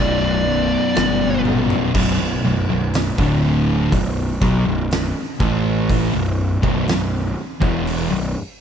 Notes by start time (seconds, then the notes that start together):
Already playing: B0 B1 D5
0.00 F#2 B2
0.46 B1 F#2 B2
0.95 G1 B1 F#2 B2, snare, crash
1.45 B1 F#2 B2, high tom
1.70 floor tom
1.94 B0 B1 F#2, kick, crash
2.19 B0 B1 F#2
2.44 B0 B1 F#2
2.68 B0 B1 F#2
2.94 snare, open hi-hat
3.18 D1 D2 A2 D3, kick
3.92 B0 B1 F#2, kick, open hi-hat
4.41 B1 B2 F#3, kick
4.66 B0 B1 F#2
4.91 snare, open hi-hat
5.40 A1 A2 E3 A3, kick
5.89 kick, open hi-hat
6.14 B0 B1 F#2
6.63 B0 B1 F#2, kick
6.87 B0 B1 F#2, snare, open hi-hat
7.60 E1 E2 B2 E3, kick
7.87 open hi-hat
8.10 B0 B1 F#2